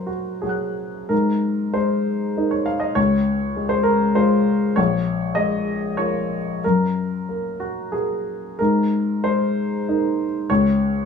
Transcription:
0.00 1.08 F#2 soft
0.00 0.42 F#3 soft
0.00 1.09 A#4 soft
0.00 1.14 C5 medium
0.07 0.41 F#4 medium
0.42 1.08 F#3 soft
0.42 1.08 F#4 soft
0.42 1.11 G#4 medium
0.42 1.08 C#5 soft
0.46 1.09 F#5 soft
0.46 1.11 F#6 soft
1.09 2.92 G#2 soft
1.09 1.74 A#4 medium
1.74 2.73 G#3 soft
1.74 2.51 C5 medium
2.36 2.92 A#3 soft
2.36 2.93 D#4 soft
2.51 2.66 C#5 medium
2.66 2.81 F5 medium
2.80 2.96 D#5 medium
2.95 4.73 C#2 medium
2.95 3.71 C#5 medium
3.56 4.15 G#3 soft
3.69 3.85 C5 medium
3.83 4.15 A#4 medium
4.15 4.73 G#3 soft
4.15 4.73 F4 medium
4.15 4.76 C5 medium
4.76 6.59 A#1 medium
4.76 5.36 C#5 medium
5.35 6.36 G#3 soft
5.35 5.97 D#5 medium
5.97 6.59 A#3 soft
5.97 6.59 F4 soft
5.97 6.62 C#5 medium
6.64 8.57 F#2 soft
6.64 7.62 A#4 medium
7.29 7.92 A#3 soft
7.60 7.92 F#4 medium
7.92 8.55 A#3 soft
7.92 8.55 F#4 soft
7.92 8.58 G#4 medium
8.59 10.46 G#2 soft
8.59 9.24 A#4 medium
9.24 10.25 G#3 soft
9.24 10.49 C5 medium
9.89 10.46 A#3 soft
9.89 10.46 D#4 soft
10.50 11.05 C#2 medium
10.50 11.05 C#5 medium

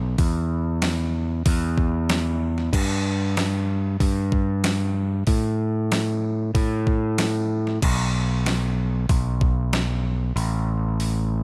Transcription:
0.00 0.15 B1 loud
0.18 1.42 E2 loud
0.18 kick loud
0.18 open hi-hat medium
0.82 snare loud
0.82 open hi-hat medium
1.46 2.69 E2 loud
1.46 kick loud
1.46 open hi-hat medium
1.78 kick medium
2.09 snare loud
2.09 open hi-hat medium
2.58 snare soft
2.73 3.96 G2 loud
2.73 kick loud
2.73 crash loud
3.37 snare loud
3.37 open hi-hat medium
4.00 5.23 G2 loud
4.00 kick loud
4.00 open hi-hat medium
4.32 kick medium
4.64 snare loud
4.64 open hi-hat medium
5.27 6.50 A2 medium
5.27 kick loud
5.27 open hi-hat medium
5.92 snare loud
5.92 open hi-hat medium
6.55 7.78 A2 loud
6.55 kick loud
6.55 open hi-hat medium
6.87 kick medium
7.18 snare loud
7.18 open hi-hat medium
7.67 snare soft
7.82 9.05 B1 loud
7.82 kick loud
7.82 crash loud
8.46 snare loud
8.46 open hi-hat medium
9.09 10.32 B1 loud
9.09 kick loud
9.09 open hi-hat medium
9.41 kick medium
9.73 snare loud
9.73 open hi-hat medium
10.36 11.43 A1 loud
10.36 open hi-hat medium
11.00 open hi-hat medium

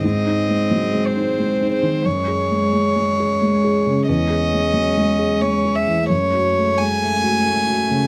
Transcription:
0.00 2.02 G#2 soft
0.00 2.02 G#3 medium
0.00 4.03 G#4 medium
0.00 2.06 C5 medium
0.00 1.08 D#5 medium
0.05 2.07 C4 soft
0.26 0.62 D#4 soft
0.49 0.85 G#3 soft
0.71 0.94 F#3 soft
0.93 1.29 G#3 soft
1.06 1.72 C5 medium
1.16 1.52 D#4 soft
1.38 1.74 G#3 soft
1.62 1.97 D#4 soft
1.72 2.07 C5 medium
1.83 2.05 D#3 soft
2.03 4.03 F#2 soft
2.03 4.05 G#3 medium
2.03 4.08 G#3 soft
2.03 6.08 C#5 medium
2.03 4.07 C#5 medium
2.28 2.64 G#4 soft
2.51 2.71 G#3 soft
2.73 2.95 G#3 soft
2.96 3.32 G#3 soft
3.20 3.55 G#4 soft
3.42 3.77 G#3 soft
3.64 3.99 G#4 soft
3.87 4.08 C#3 soft
4.06 6.06 E2 soft
4.06 6.09 G#3 medium
4.06 6.07 C#4 soft
4.06 6.05 G#4 medium
4.06 5.43 D#5 medium
4.30 4.66 G#4 soft
4.53 4.88 G#3 soft
4.74 4.96 F#3 soft
4.98 5.33 G#3 soft
5.19 5.55 G#4 soft
5.42 5.78 G#3 soft
5.42 5.76 C#5 medium
5.65 6.01 G#4 soft
5.75 6.08 E5 medium
5.88 6.10 E3 soft
6.08 8.07 F#2 medium
6.08 8.07 A3 soft
6.08 8.07 A3 medium
6.08 8.07 F#4 medium
6.08 6.80 C#5 medium
6.08 8.07 C#5 medium
6.34 6.70 F#4 soft
6.57 6.93 A3 soft
6.78 7.02 G#3 soft
6.78 8.07 G#5 medium
7.02 7.37 A3 soft
7.23 7.59 F#4 soft
7.46 7.82 A3 soft
7.67 8.04 F#4 soft
7.90 8.07 C#3 soft

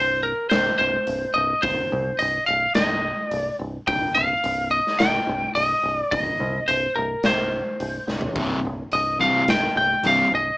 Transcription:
0.00 0.31 C1 medium
0.00 0.23 C5 medium
0.23 0.49 A#4 medium
0.50 0.69 C1 medium
0.50 0.77 C5 medium
0.50 snare loud
0.50 open hi-hat soft
0.78 0.97 C1 medium
0.78 1.36 C5 medium
1.07 1.25 C1 medium
1.07 open hi-hat soft
1.34 1.53 C1 medium
1.34 1.61 D#5 medium
1.62 1.81 C1 medium
1.62 2.20 C5 medium
1.62 kick loud
1.62 open hi-hat soft
1.92 2.10 C2 medium
2.19 2.38 C1 medium
2.19 2.46 D#5 medium
2.19 open hi-hat soft
2.46 2.66 C1 medium
2.46 2.75 F5 medium
2.75 3.11 C1 medium
2.75 3.30 D#5 medium
2.75 snare medium
2.75 open hi-hat soft
3.30 3.49 C1 medium
3.30 3.56 D5 medium
3.30 open hi-hat soft
3.59 3.77 C1 medium
3.88 4.06 C1 medium
3.88 4.17 G5 medium
3.88 kick loud
3.88 open hi-hat soft
4.15 4.33 C1 medium
4.15 4.70 F5 medium
4.44 4.79 C1 medium
4.44 open hi-hat soft
4.71 4.97 D#5 medium
4.87 snare soft
4.99 5.18 C1 medium
4.99 5.51 G5 medium
4.99 snare loud
4.99 open hi-hat soft
5.27 5.45 C1 medium
5.55 5.73 C1 medium
5.55 5.97 D#5 medium
5.55 open hi-hat soft
5.83 6.01 C1 medium
5.97 6.10 D5 medium
6.11 6.30 C1 medium
6.11 6.69 D#5 medium
6.11 kick loud
6.11 open hi-hat soft
6.40 6.58 C2 medium
6.68 6.86 C1 medium
6.68 6.95 C5 medium
6.68 open hi-hat soft
6.96 7.14 C1 medium
6.96 7.25 A#4 medium
7.23 7.60 C1 medium
7.23 8.05 C5 medium
7.23 snare loud
7.23 open hi-hat soft
7.80 7.98 C1 medium
7.80 open hi-hat soft
8.07 8.25 C1 medium
8.07 snare soft
8.21 floor tom medium
8.35 8.54 C1 medium
8.35 8.58 C2 medium
8.35 8.58 G2 medium
8.35 8.59 C3 loud
8.35 kick loud
8.35 open hi-hat soft
8.65 8.83 C1 medium
8.92 9.28 C1 medium
8.92 9.20 D#5 medium
8.92 open hi-hat soft
9.20 9.42 C2 medium
9.20 9.43 G2 medium
9.20 9.43 C3 medium
9.20 9.49 F5 medium
9.48 9.66 C1 medium
9.48 9.75 G5 medium
9.48 snare medium
9.48 open hi-hat soft
9.76 9.94 C1 medium
9.76 10.05 G5 medium
10.04 10.22 C1 medium
10.04 10.27 C2 medium
10.04 10.27 G2 medium
10.04 10.27 C3 medium
10.04 10.31 F5 medium
10.04 open hi-hat soft
10.32 10.50 C1 medium
10.32 10.57 D#5 medium

